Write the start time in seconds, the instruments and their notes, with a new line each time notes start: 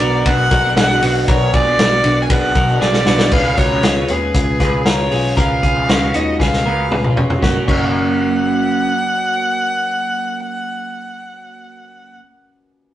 Already playing: clean electric guitar B3 D4 F#4, violin D5
0.00 picked electric bass B1, upright piano D4 F#4 B4, clean electric guitar F#4 A#4, ride
0.25 picked electric bass B1, clean electric guitar F#3 B3 D4 F#4, upright piano D4 F#4 B4, violin F#5, kick, ride
0.50 picked electric bass B1, upright piano D4 F#4 G#4, clean electric guitar F#4 A#4, kick, snare, ride
0.65 clean electric guitar B2 F#3 B3 D4 F#4
0.76 picked electric bass B1, upright piano D4 F#4 B4, clean electric guitar D4 G#4, violin F#5, snare, ride
0.90 clean electric guitar B2 F#3 B3 D4 F#4
1.02 picked electric bass B1, upright piano D4 F#4 B4, clean electric guitar D4 F#4, open hi-hat, ride
1.27 picked electric bass B1, clean electric guitar F#3 B3 D4 F#4 A#4, upright piano D4 F#4 B4, violin C#5, kick, hi-hat pedal, ride
1.52 picked electric bass B1, upright piano D4 F#4 B4, clean electric guitar F4 G#4, violin D5, kick, ride
1.65 clean electric guitar B2 F#3 B3 D4 F#4
1.78 picked electric bass B1, upright piano D4 F#4 B4, clean electric guitar D4 F#4, snare, ride
1.92 clean electric guitar B3 D4 F#4
2.03 picked electric bass B1, upright piano D4 F#4 B4, clean electric guitar D4 F#4, ride
2.22 violin G#5
2.29 picked electric bass B1, clean electric guitar F#3 B3 D4 F#4 G#4, upright piano D4 F#4 B4, violin F#5, kick, ride
2.55 picked electric bass B1, upright piano D4 F#4, clean electric guitar F#4 A#4, kick, ride
2.69 clean electric guitar B2 F#3 B3 D4 F#4
2.80 picked electric bass B1, upright piano D4 F#4 B4, clean electric guitar D4 G#4, violin D5, snare
2.93 clean electric guitar B2 F#3 B3 D4 F#4, snare
3.06 picked electric bass B1, upright piano D4 F#4 B4, clean electric guitar D4 F#4, snare
3.19 snare
3.31 picked electric bass C#2, clean electric guitar G#3 C#4 F4 G#4 B4, upright piano C#4 F4 B4, violin F5, kick, crash
3.35 clean electric guitar B4
3.57 picked electric bass C#2, upright piano C#4 F4 B4, clean electric guitar F#4 A#4, violin C#5, kick, closed hi-hat
3.71 clean electric guitar C#3 F3 G#3 C#4 F4 B4
3.83 picked electric bass C#2, upright piano C#4 F4 B4, clean electric guitar F4 G#4, snare, closed hi-hat
3.98 clean electric guitar G#3 C#4 F4 B4
4.08 picked electric bass D#2, upright piano C#4 F4 B4, violin G#4, clean electric guitar G#4 B4, closed hi-hat
4.34 picked electric bass C#2, upright piano C#4 F4 B4, kick, closed hi-hat
4.59 picked electric bass C#2, clean electric guitar G#3 C#4 F4 G#4 B4, upright piano C#4 F4 B4, kick, snare, closed hi-hat
4.85 picked electric bass C#2, upright piano C#4 F4 B4, clean electric guitar F4 A#4, violin C#5, snare, closed hi-hat
4.99 clean electric guitar G#3 C#4 F4 B4
5.11 picked electric bass B1, upright piano C#4 F4 B4, clean electric guitar F4 G#4, open hi-hat
5.36 picked electric bass C#2, clean electric guitar G#3 C#4 F4 A#4 B4, upright piano C#4 F4 B4, violin F5, kick, closed hi-hat
5.63 picked electric bass C#2, upright piano C#4 F4 B4, clean electric guitar F4 G#4, kick, closed hi-hat
5.75 clean electric guitar C#3 F3 G#3 C#4 F4 B4
5.89 picked electric bass C#2, clean electric guitar C#4 F#4, upright piano F4 B4, snare, closed hi-hat
6.01 clean electric guitar G#3 C#4 F4 B4
6.14 picked electric bass D#2, upright piano C#4 F4 C#5, clean electric guitar D#4 F#4, violin D#5, closed hi-hat
6.39 picked electric bass C#2, upright piano C#4 F4 B4, clean electric guitar F4 G#4, violin F5, kick, snare
6.53 snare
6.65 picked electric bass C#2, clean electric guitar G#3 C#4 F4 F#4 A#4 B4, upright piano C#4 F4 B4
6.90 picked electric bass C#2, upright piano C#4 F4 B4, clean electric guitar F4 G#4, mid tom
7.04 clean electric guitar G#3 C#4 F4 B4, mid tom
7.15 picked electric bass F1, upright piano C#4 F4 B4, clean electric guitar C#4 F4, floor tom
7.30 floor tom
7.38 clean electric guitar F#3, upright piano C#4 F#4
7.42 picked electric bass F#1, clean electric guitar A#3 C#4, upright piano A#4, violin F#5, kick, snare
7.47 clean electric guitar C#4 F#4
7.55 clean electric guitar A#4
7.63 clean electric guitar F#3, upright piano C#4 F#4
7.68 picked electric bass F#1, clean electric guitar A#3 C#4, upright piano A#4, violin F#5, kick, crash
7.73 clean electric guitar C#4
7.77 clean electric guitar F#4 A#4